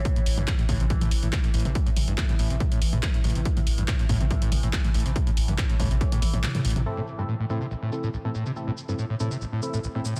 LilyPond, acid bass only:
\new Staff \with { instrumentName = "Acid bass" } { \clef bass \time 4/4 \key a \minor \tempo 4 = 141 r16 a,16 r16 g,16 a,16 a,16 a,16 c16 a,,16 a,16 r16 a,16 a,,16 a,16 a,16 c16 | r16 a,16 r16 g,16 a,16 a,16 a,16 c16 a,,16 a,16 r16 a,16 a,,16 a,16 a,16 c16 | r16 a,16 r16 g,16 a,16 a,16 a,16 c16 a,,16 a,16 r16 a,16 a,,16 a,16 a,16 c16 | r16 a,16 r16 g,16 a,16 a,16 a,16 c16 a,,16 a,16 r16 a,16 a,,16 a,16 a,16 c16 |
r16 a,16 r16 g,16 a,16 a,16 a,16 c16 a,,16 a,16 r16 a,16 a,,16 a,16 a,16 c16 | r16 a,16 r16 g,16 a,16 a,16 a,16 c16 a,,16 a,16 r16 a,16 a,,16 a,16 a,16 c16 | }